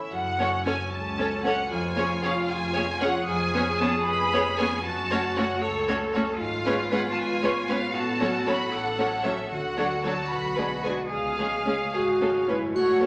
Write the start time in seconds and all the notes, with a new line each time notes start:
Already playing: A2 C#4 E4 A4 C#5 E5
0.12 F#1 F#2 F#5
0.38 C#4 A4 C#5
0.66 C#4 A4 C#5 G#5
0.92 C#2 C#4 A4 A5
1.18 C#4 A4 C#5
1.44 C#4 A4 C#5 F#5
1.70 F1 F2 F4 G#5
1.97 C#4 G#4 C#5
2.23 C#4 G#4 C#5 F5
2.49 F1 G#4 G#5
2.74 C#4 G#4 C#5
3.00 C#4 G#4 C#5 F#5
3.28 F1 F2 G#4 G#5
3.54 B3 C#4 G#4 C#5
3.80 B3 C#4 G#4 C#5 A5
4.06 F1 B4 B5
4.33 B3 C#4 G#4 C#5
4.58 B3 C#4 G#4 C#5 G#5
4.85 F#1 F#2 F#4 A5
5.11 A3 C#4 F#4 C#5
5.36 A3 C#4 F#4 C#5 F#5
5.62 C#2 A4 C#5
5.88 A3 C#4 F#4 C#5
6.14 A3 C#4 F#4 C#5
6.39 G#1 G#2 F4 F5
6.65 G#3 B3 C#4 B4 C#5
6.91 G#3 C#4 B4 C#5 F#5
7.11 A5
7.16 G#1 B4 G#5
7.42 G#3 C#4 B4 C#5
7.67 G#3 B3 C#4 B4 C#5 F5
7.93 A1 A2 F#4 A5
8.20 F#3 A3 C#4 A4 C#5
8.46 F#3 C#4 A4 C#5 B5
8.71 A1 A4 F#5
8.98 F#3 C#4 A4 C#5
9.23 F#3 A3 C#4 A4 C#5 E5
9.50 D2 D3 F#4 F#5
9.77 F#3 A3 D4 A4 C#5
10.03 F#3 D4 F#4 A4 C#5 A5
10.30 B1 B2 B5
10.56 G#3 D4 G#4 B4
10.83 G#3 D4 G#4 B4 D5 G#5
11.11 C#2 C#3 G#4 F5
11.38 G#3 C#4 G#4
11.66 G#3 C#4 G#4 C#5
11.94 G#1 F#4 G#4
12.21 G#3 C#4 A4 C#5
12.48 G#3 C#4 E4 B4
12.58 F#2
12.63 A3
12.67 F#4
12.72 A3 F#4 C#5
12.76 F#1 F#2 C#5 F#5, triangle
13.01 A3 C#4 A4 A5